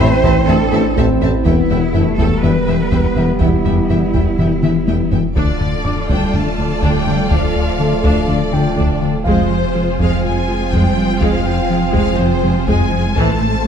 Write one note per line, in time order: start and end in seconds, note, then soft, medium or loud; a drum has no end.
0.00 1.47 A1 medium
0.00 1.42 E3 loud
0.00 0.14 A3 medium
0.00 1.42 C4 loud
0.00 0.14 E4 medium
0.00 0.48 E4 loud
0.00 0.46 C5 loud
0.00 0.08 A5 medium
0.00 1.41 B5 medium
0.23 0.33 A1 medium
0.23 0.32 A1 medium
0.23 0.38 A2 loud
0.23 0.38 A3 loud
0.23 0.33 C4 medium
0.23 0.32 E5 medium
0.23 0.32 A5 medium
0.23 taiko medium
0.46 0.58 A1 medium
0.46 0.56 A1 medium
0.46 0.63 A3 medium
0.46 0.56 C4 medium
0.46 0.96 D4 medium
0.46 0.63 E4 medium
0.46 0.97 A4 loud
0.46 0.56 E5 medium
0.46 0.56 A5 medium
0.46 taiko low medium
0.72 0.80 A1 medium
0.72 0.82 A1 medium
0.72 0.87 A3 medium
0.72 0.81 C4 medium
0.72 0.87 E4 medium
0.72 0.80 E5 medium
0.72 0.81 A5 medium
0.97 1.05 A1 medium
0.97 1.07 A1 medium
0.97 1.11 A2 loud
0.97 1.11 A3 loud
0.97 1.45 C4 medium
0.97 1.06 C4 medium
0.97 1.05 E5 medium
0.97 1.07 A5 medium
0.97 taiko medium
1.21 1.29 A1 medium
1.21 1.31 A1 medium
1.21 1.36 A3 medium
1.21 1.30 C4 medium
1.21 1.36 E4 medium
1.21 1.29 E5 medium
1.21 1.31 A5 medium
1.21 taiko low medium
1.45 1.54 E1 medium
1.45 1.55 E1 medium
1.45 5.36 E1 medium
1.45 1.60 E2 loud
1.45 1.60 E3 loud
1.45 5.08 G3 medium
1.45 1.94 B3 medium
1.45 5.08 B3 medium
1.45 1.54 B3 medium
1.45 2.15 E4 loud
1.45 1.53 E5 medium
1.45 1.54 G5 medium
1.45 taiko medium
1.70 1.80 E1 medium
1.70 1.78 E1 medium
1.70 1.85 E2 medium
1.70 1.79 B3 medium
1.70 1.78 E5 medium
1.70 1.79 G5 medium
1.70 taiko low medium
1.94 2.02 E1 medium
1.94 2.04 E1 medium
1.94 2.09 E3 medium
1.94 2.43 A3 medium
1.94 2.09 B3 medium
1.94 2.03 B3 medium
1.94 2.02 E5 medium
1.94 2.03 G5 medium
1.94 taiko low medium
2.18 2.28 E1 medium
2.18 2.27 E1 medium
2.18 2.33 E2 loud
2.18 2.34 E3 loud
2.18 2.27 B3 medium
2.18 2.43 A4 medium
2.18 2.26 E5 medium
2.18 2.27 G5 medium
2.18 taiko medium
2.43 2.53 E1 medium
2.43 2.51 E1 medium
2.43 2.58 E3 medium
2.43 2.92 G3 medium
2.43 2.58 B3 medium
2.43 2.52 B3 medium
2.43 3.41 B4 medium
2.43 2.51 E5 medium
2.43 2.52 G5 medium
2.43 taiko low medium
2.67 2.77 E1 medium
2.67 2.76 E1 medium
2.67 2.82 E3 medium
2.67 2.82 B3 medium
2.67 2.76 B3 medium
2.67 2.75 E5 medium
2.67 2.76 G5 medium
2.92 3.01 E1 medium
2.92 3.00 E1 medium
2.92 3.07 E2 loud
2.92 3.06 E3 loud
2.92 3.00 B3 soft
2.92 3.41 B3 medium
2.92 3.00 E5 medium
2.92 3.00 G5 medium
2.92 taiko medium
3.16 3.26 E1 medium
3.16 3.24 E1 medium
3.16 3.32 E3 medium
3.16 3.31 B3 medium
3.16 3.25 B3 medium
3.16 3.24 E5 soft
3.16 3.25 G5 soft
3.16 taiko low medium
3.40 3.50 E1 medium
3.40 3.49 E1 medium
3.40 3.56 E2 loud
3.40 3.55 E3 loud
3.40 5.12 G3 medium
3.40 3.49 B3 medium
3.40 5.08 E4 medium
3.40 3.48 E5 medium
3.40 3.49 G5 medium
3.40 taiko medium
3.65 3.75 E1 medium
3.65 3.74 E1 medium
3.65 3.80 E2 medium
3.65 3.74 B3 soft
3.65 3.73 E5 soft
3.65 3.74 G5 soft
3.65 taiko low medium
3.89 3.99 E1 medium
3.89 3.98 E1 medium
3.89 4.04 E3 medium
3.89 4.04 B3 medium
3.89 3.98 B3 medium
3.89 3.98 E5 soft
3.89 3.98 G5 soft
3.89 taiko low medium
4.13 4.24 E1 medium
4.13 4.22 E1 medium
4.13 4.29 E2 medium
4.13 4.28 E3 medium
4.13 4.23 B3 soft
4.13 4.22 E5 soft
4.13 4.22 G5 medium
4.13 taiko medium
4.38 4.48 E1 medium
4.38 4.47 E1 medium
4.38 4.53 E3 medium
4.38 4.53 B3 medium
4.38 4.47 B3 soft
4.38 4.47 E5 soft
4.38 4.48 G5 medium
4.38 taiko low medium
4.63 4.71 E1 medium
4.63 4.73 E1 medium
4.63 4.77 E3 medium
4.63 4.77 B3 medium
4.63 4.72 B3 soft
4.63 4.71 E5 soft
4.63 4.72 G5 soft
4.63 taiko mid medium
4.87 4.97 E1 medium
4.87 4.95 E1 medium
4.87 5.02 E2 medium
4.87 5.02 E3 loud
4.87 4.97 B3 soft
4.87 4.95 E5 soft
4.87 4.95 G5 medium
4.87 taiko high medium
5.11 5.21 E1 medium
5.11 5.20 E1 medium
5.11 5.27 E3 medium
5.11 5.26 B3 medium
5.11 5.21 B3 soft
5.11 5.20 E5 soft
5.11 5.20 G5 soft
5.11 taiko low medium
5.36 9.28 D1 medium
5.36 5.44 D2 medium
5.36 5.51 D2 medium
5.36 6.05 D3 medium
5.36 5.51 D3 medium
5.36 9.23 F3 medium
5.36 9.22 A3 medium
5.36 9.23 A3 medium
5.36 5.59 D4 medium
5.36 9.22 F4 medium
5.36 9.23 F4 medium
5.36 9.22 A4 medium
5.36 9.22 D5 medium
5.36 6.05 D5 medium
5.36 taiko medium
5.61 5.75 D2 medium
5.61 taiko low medium
5.85 5.93 D2 soft
5.85 6.00 D3 medium
5.85 6.00 A3 medium
5.85 5.94 D4 medium
5.85 7.27 D6 soft
5.85 taiko low medium
6.09 6.17 D2 medium
6.09 6.25 D2 medium
6.09 6.24 D3 medium
6.09 6.34 G3 medium
6.09 6.32 D4 medium
6.09 6.33 G5 medium
6.09 taiko medium
6.33 6.42 D2 soft
6.33 6.49 D3 medium
6.33 6.48 A3 medium
6.33 6.83 A3 medium
6.33 6.43 D4 soft
6.33 6.83 A5 medium
6.33 taiko low medium
6.58 6.66 D2 medium
6.58 6.73 D3 medium
6.58 6.73 A3 medium
6.58 6.67 D4 soft
6.82 6.97 D2 medium
6.82 6.91 D2 medium
6.82 6.97 D3 loud
6.82 7.30 G3 medium
6.82 7.05 D4 medium
6.82 7.31 G5 medium
6.82 taiko medium
7.07 7.15 D2 medium
7.07 7.21 D3 medium
7.07 7.22 A3 medium
7.07 7.15 D4 medium
7.07 taiko low soft
7.30 7.45 D2 medium
7.30 7.39 D2 medium
7.30 7.46 D3 medium
7.30 8.03 F3 medium
7.30 7.54 D4 medium
7.30 8.04 F5 medium
7.30 taiko medium
7.55 7.70 D2 medium
7.79 7.88 D2 soft
7.79 7.94 D3 medium
7.79 7.95 A3 medium
7.79 7.88 D4 soft
8.03 8.18 D2 medium
8.03 8.12 D2 medium
8.03 8.19 D3 medium
8.03 8.28 F3 medium
8.03 8.27 D4 medium
8.03 8.29 F5 medium
8.03 taiko medium
8.28 8.37 D2 medium
8.28 8.43 D3 medium
8.28 9.00 D3 medium
8.28 8.43 A3 medium
8.28 8.37 D4 medium
8.28 9.02 D5 medium
8.52 8.61 D2 medium
8.52 8.67 D3 medium
8.52 8.68 A3 medium
8.52 8.61 D4 medium
8.52 9.95 F4 soft
8.52 9.95 G5 medium
8.77 8.92 D2 medium
8.77 8.85 D2 medium
8.77 8.92 D3 medium
8.77 9.00 D4 medium
8.77 taiko medium
9.01 9.10 D2 medium
9.01 9.16 D3 medium
9.01 9.16 A3 medium
9.01 9.10 D4 medium
9.24 13.18 F1 medium
9.24 9.40 F2 medium
9.24 9.34 F2 medium
9.24 9.96 C3 medium
9.24 9.41 F3 medium
9.24 13.00 F3 medium
9.24 9.49 G#3 medium
9.24 12.98 C4 medium
9.24 13.00 C4 medium
9.24 12.98 F4 medium
9.24 13.67 F4 medium
9.24 13.12 G#4 medium
9.24 13.12 C5 medium
9.24 9.96 C5 medium
9.24 10.67 F5 medium
9.24 taiko medium
9.50 9.65 F2 medium
9.75 9.83 F2 soft
9.75 9.90 F3 medium
9.75 9.84 G#3 soft
9.75 9.89 C4 medium
9.99 10.07 F2 medium
9.99 10.14 F2 medium
9.99 10.14 F3 medium
9.99 10.24 F3 medium
9.99 10.22 G#3 medium
9.99 10.24 F5 medium
9.99 taiko medium
10.24 10.32 F2 medium
10.24 10.39 F3 medium
10.24 10.73 G#3 medium
10.24 10.33 G#3 soft
10.24 10.39 C4 medium
10.24 10.72 G#5 medium
10.48 10.57 F2 medium
10.48 10.63 F3 medium
10.48 10.57 G#3 medium
10.48 10.63 C4 medium
10.72 10.87 F2 medium
10.72 10.81 F2 medium
10.72 10.87 F3 medium
10.72 11.20 G3 medium
10.72 10.96 G#3 medium
10.72 11.22 G5 medium
10.72 taiko medium
10.97 11.05 F2 medium
10.97 11.11 F3 medium
10.97 11.05 G#3 medium
10.97 11.12 C4 medium
11.21 11.36 F2 medium
11.21 11.29 F2 medium
11.21 11.36 F3 medium
11.21 11.93 F3 medium
11.21 11.44 G#3 medium
11.21 11.94 F5 medium
11.21 taiko medium
11.45 11.60 F2 medium
11.45 12.88 G5 medium
11.70 11.78 F2 soft
11.70 11.85 F3 medium
11.70 11.78 G#3 soft
11.70 11.85 C4 medium
11.94 12.09 F2 medium
11.94 12.02 F2 medium
11.94 12.18 F3 medium
11.94 12.09 F3 medium
11.94 12.17 G#3 medium
11.94 12.19 F5 medium
11.94 taiko medium
12.18 12.26 F2 medium
12.18 12.68 C3 medium
12.18 12.33 F3 medium
12.18 12.27 G#3 medium
12.18 12.33 C4 medium
12.18 12.67 C5 medium
12.43 12.51 F2 medium
12.43 12.58 F3 medium
12.43 12.52 G#3 medium
12.43 12.58 C4 medium
12.67 12.75 F2 medium
12.67 12.82 F2 medium
12.67 12.82 F3 medium
12.67 13.16 G#3 medium
12.67 12.90 G#3 medium
12.67 13.16 G#5 medium
12.67 taiko medium
12.91 13.00 F2 medium
12.91 13.06 F3 medium
12.91 13.00 G#3 medium
12.91 13.07 C4 medium
13.15 13.24 A1 medium
13.15 13.67 A1 medium
13.15 13.31 A2 medium
13.15 13.67 C3 medium
13.15 13.39 E3 medium
13.15 13.31 A3 medium
13.15 13.67 A3 medium
13.15 13.67 C4 medium
13.15 13.67 A4 medium
13.15 13.67 C5 medium
13.15 13.67 A5 medium
13.15 taiko medium
13.41 13.55 A2 medium